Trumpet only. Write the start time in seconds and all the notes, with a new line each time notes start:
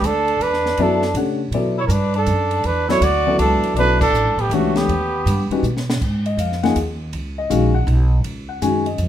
0.05 A4
0.43 B4
0.82 A4
1.80 C#5
1.87 A#4
1.92 B4
2.17 A4
2.66 B4
2.91 C#5
3.04 D5
3.41 A4
3.78 B4
4.02 A4
4.41 G4
4.54 F#4
4.77 G4